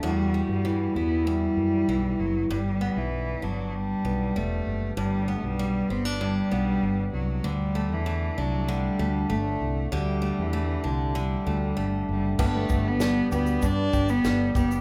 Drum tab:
CC |----------------|----------------|----------------|----------------|
SH |----------------|----------------|----------------|----------------|
SD |----------------|----------------|----------------|----------------|
BD |----------------|----------------|----------------|----------------|

CC |----------------|x---------------|
SH |----------------|--x-x-xxx-xxx-xx|
SD |----------------|----o-------o---|
BD |----------------|o-o-----o-o---o-|